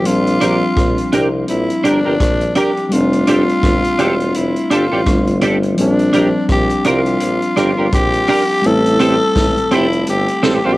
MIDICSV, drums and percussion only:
0, 0, Header, 1, 2, 480
1, 0, Start_track
1, 0, Tempo, 715137
1, 36, Time_signature, 4, 2, 24, 8
1, 7233, End_track
2, 0, Start_track
2, 0, Title_t, "Drums"
2, 36, Note_on_c, 9, 42, 95
2, 103, Note_off_c, 9, 42, 0
2, 182, Note_on_c, 9, 42, 43
2, 249, Note_off_c, 9, 42, 0
2, 277, Note_on_c, 9, 42, 74
2, 344, Note_off_c, 9, 42, 0
2, 516, Note_on_c, 9, 36, 109
2, 517, Note_on_c, 9, 42, 85
2, 519, Note_on_c, 9, 37, 103
2, 583, Note_off_c, 9, 36, 0
2, 584, Note_off_c, 9, 42, 0
2, 586, Note_off_c, 9, 37, 0
2, 658, Note_on_c, 9, 42, 44
2, 725, Note_off_c, 9, 42, 0
2, 756, Note_on_c, 9, 42, 62
2, 823, Note_off_c, 9, 42, 0
2, 993, Note_on_c, 9, 42, 76
2, 1060, Note_off_c, 9, 42, 0
2, 1140, Note_on_c, 9, 42, 46
2, 1207, Note_off_c, 9, 42, 0
2, 1240, Note_on_c, 9, 42, 63
2, 1307, Note_off_c, 9, 42, 0
2, 1478, Note_on_c, 9, 36, 101
2, 1478, Note_on_c, 9, 42, 104
2, 1481, Note_on_c, 9, 37, 102
2, 1545, Note_off_c, 9, 36, 0
2, 1545, Note_off_c, 9, 42, 0
2, 1548, Note_off_c, 9, 37, 0
2, 1618, Note_on_c, 9, 42, 42
2, 1685, Note_off_c, 9, 42, 0
2, 1713, Note_on_c, 9, 42, 77
2, 1780, Note_off_c, 9, 42, 0
2, 1861, Note_on_c, 9, 42, 29
2, 1928, Note_off_c, 9, 42, 0
2, 1957, Note_on_c, 9, 42, 93
2, 2024, Note_off_c, 9, 42, 0
2, 2100, Note_on_c, 9, 42, 40
2, 2167, Note_off_c, 9, 42, 0
2, 2195, Note_on_c, 9, 42, 76
2, 2263, Note_off_c, 9, 42, 0
2, 2344, Note_on_c, 9, 42, 33
2, 2412, Note_off_c, 9, 42, 0
2, 2437, Note_on_c, 9, 36, 99
2, 2439, Note_on_c, 9, 42, 86
2, 2441, Note_on_c, 9, 37, 103
2, 2504, Note_off_c, 9, 36, 0
2, 2506, Note_off_c, 9, 42, 0
2, 2508, Note_off_c, 9, 37, 0
2, 2580, Note_on_c, 9, 42, 44
2, 2647, Note_off_c, 9, 42, 0
2, 2676, Note_on_c, 9, 42, 63
2, 2743, Note_off_c, 9, 42, 0
2, 2820, Note_on_c, 9, 42, 33
2, 2887, Note_off_c, 9, 42, 0
2, 2916, Note_on_c, 9, 42, 78
2, 2983, Note_off_c, 9, 42, 0
2, 3061, Note_on_c, 9, 42, 39
2, 3128, Note_off_c, 9, 42, 0
2, 3160, Note_on_c, 9, 42, 71
2, 3227, Note_off_c, 9, 42, 0
2, 3398, Note_on_c, 9, 42, 94
2, 3399, Note_on_c, 9, 36, 96
2, 3401, Note_on_c, 9, 37, 109
2, 3465, Note_off_c, 9, 42, 0
2, 3466, Note_off_c, 9, 36, 0
2, 3468, Note_off_c, 9, 37, 0
2, 3539, Note_on_c, 9, 42, 45
2, 3606, Note_off_c, 9, 42, 0
2, 3633, Note_on_c, 9, 42, 70
2, 3700, Note_off_c, 9, 42, 0
2, 3779, Note_on_c, 9, 42, 33
2, 3846, Note_off_c, 9, 42, 0
2, 3876, Note_on_c, 9, 42, 92
2, 3943, Note_off_c, 9, 42, 0
2, 4020, Note_on_c, 9, 42, 40
2, 4087, Note_off_c, 9, 42, 0
2, 4116, Note_on_c, 9, 42, 71
2, 4184, Note_off_c, 9, 42, 0
2, 4356, Note_on_c, 9, 36, 103
2, 4356, Note_on_c, 9, 42, 82
2, 4357, Note_on_c, 9, 37, 104
2, 4423, Note_off_c, 9, 36, 0
2, 4423, Note_off_c, 9, 42, 0
2, 4424, Note_off_c, 9, 37, 0
2, 4497, Note_on_c, 9, 42, 43
2, 4564, Note_off_c, 9, 42, 0
2, 4594, Note_on_c, 9, 42, 65
2, 4661, Note_off_c, 9, 42, 0
2, 4738, Note_on_c, 9, 42, 34
2, 4805, Note_off_c, 9, 42, 0
2, 4835, Note_on_c, 9, 42, 90
2, 4902, Note_off_c, 9, 42, 0
2, 4980, Note_on_c, 9, 42, 40
2, 5047, Note_off_c, 9, 42, 0
2, 5080, Note_on_c, 9, 37, 58
2, 5081, Note_on_c, 9, 42, 62
2, 5147, Note_off_c, 9, 37, 0
2, 5148, Note_off_c, 9, 42, 0
2, 5317, Note_on_c, 9, 42, 103
2, 5319, Note_on_c, 9, 36, 103
2, 5320, Note_on_c, 9, 37, 101
2, 5384, Note_off_c, 9, 42, 0
2, 5387, Note_off_c, 9, 36, 0
2, 5387, Note_off_c, 9, 37, 0
2, 5458, Note_on_c, 9, 42, 45
2, 5525, Note_off_c, 9, 42, 0
2, 5553, Note_on_c, 9, 46, 70
2, 5620, Note_off_c, 9, 46, 0
2, 5798, Note_on_c, 9, 42, 100
2, 5865, Note_off_c, 9, 42, 0
2, 5944, Note_on_c, 9, 42, 48
2, 6011, Note_off_c, 9, 42, 0
2, 6040, Note_on_c, 9, 42, 77
2, 6107, Note_off_c, 9, 42, 0
2, 6279, Note_on_c, 9, 36, 100
2, 6281, Note_on_c, 9, 42, 99
2, 6283, Note_on_c, 9, 38, 99
2, 6346, Note_off_c, 9, 36, 0
2, 6348, Note_off_c, 9, 42, 0
2, 6350, Note_off_c, 9, 38, 0
2, 6422, Note_on_c, 9, 42, 43
2, 6489, Note_off_c, 9, 42, 0
2, 6518, Note_on_c, 9, 42, 71
2, 6585, Note_off_c, 9, 42, 0
2, 6662, Note_on_c, 9, 42, 34
2, 6729, Note_off_c, 9, 42, 0
2, 6756, Note_on_c, 9, 42, 90
2, 6823, Note_off_c, 9, 42, 0
2, 6902, Note_on_c, 9, 42, 47
2, 6969, Note_off_c, 9, 42, 0
2, 7003, Note_on_c, 9, 38, 64
2, 7004, Note_on_c, 9, 42, 74
2, 7070, Note_off_c, 9, 38, 0
2, 7071, Note_off_c, 9, 42, 0
2, 7233, End_track
0, 0, End_of_file